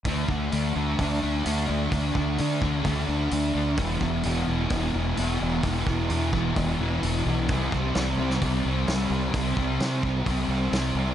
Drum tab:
HH |o---o---o---o---|o---o---o---o---|o---o---o---o---|o---o---o---o---|
SD |----------------|----------------|----------------|----------------|
BD |o-o-----o-------|o-o---o-o-------|o-o-----o-------|o-o---o-o-------|

HH |o---o---o---o---|o---o---o---o---|
SD |----o--o----o---|----o-------o---|
BD |o-o-----o-------|o-o---o-o-------|